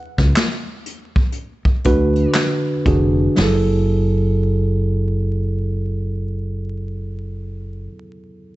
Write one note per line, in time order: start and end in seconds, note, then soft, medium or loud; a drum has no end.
0.00 2.32 F#5 medium
0.18 0.33 C#2 medium
0.18 kick medium
0.18 snare soft
0.36 snare loud
0.36 clap medium
0.36 closed hi-hat medium
0.86 closed hi-hat medium
1.16 kick medium
1.32 closed hi-hat medium
1.65 muted fingered electric bass stroke soft
1.65 kick medium
1.84 2.25 D2 medium
1.84 2.75 D3 medium
1.84 2.75 D4 medium
1.84 2.75 F#4 medium
1.84 2.75 B4 medium
1.84 kick medium
1.84 closed hi-hat medium
2.16 closed hi-hat soft
2.34 snare medium
2.34 clap medium
2.34 closed hi-hat medium
2.86 3.27 F1 medium
2.86 3.32 D3 medium
2.86 3.33 D4 medium
2.86 3.33 F#4 medium
2.86 3.33 G#4 medium
2.86 kick medium
2.86 closed hi-hat medium
3.36 7.87 F#1 medium
3.36 7.84 F#3 medium
3.36 7.86 E4 medium
3.36 snare medium
3.36 floor tom medium
3.36 open hi-hat medium
3.40 7.88 G#4 medium
3.40 7.90 A4 medium